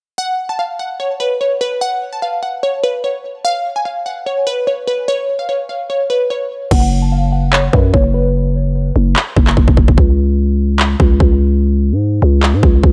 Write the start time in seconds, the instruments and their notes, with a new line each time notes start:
0.18 synth pluck F#5
0.49 synth pluck A5
0.59 synth pluck F5
0.79 synth pluck F#5
1.00 synth pluck C#5
1.20 synth pluck B4
1.41 synth pluck C#5
1.61 synth pluck B4
1.81 synth pluck F#5
2.13 synth pluck A5
2.22 synth pluck F5
2.43 synth pluck F#5
2.63 synth pluck C#5
2.84 synth pluck B4
3.04 synth pluck C#5
3.45 synth pluck F5
3.76 synth pluck G#5
3.85 synth pluck F5
4.06 synth pluck F#5
4.26 synth pluck C#5
4.47 synth pluck B4
4.67 synth pluck C#5
4.87 synth pluck B4
5.08 synth pluck C#5
5.39 synth pluck F5
5.49 synth pluck C#5
5.69 synth pluck F5
5.90 synth pluck C#5
6.10 synth pluck B4
6.30 synth pluck C#5
6.71 808-style bass F#1, synth pluck F#5, kick, crash
7.02 synth pluck A5
7.12 synth pluck F5
7.32 synth pluck F#5
7.53 synth pluck C#5, clap
7.73 808-style bass F#2, synth pluck B4, kick
7.94 808-style bass F#1, synth pluck C#5, kick
8.14 synth pluck B4
8.96 808-style bass F#1
9.16 clap
9.37 808-style bass F#1, kick
9.47 clap
9.57 808-style bass F#1, kick
9.68 808-style bass F#1, kick
9.77 808-style bass F#1, kick
9.88 808-style bass F#1, kick
9.98 808-style bass C#2, kick
10.79 clap
11.00 808-style bass C#2, kick
11.20 808-style bass C#2, kick
11.92 808-style bass G#2
12.22 808-style bass C#2
12.43 clap
12.53 808-style bass G#2
12.63 808-style bass C#2, kick
12.83 808-style bass C#2, kick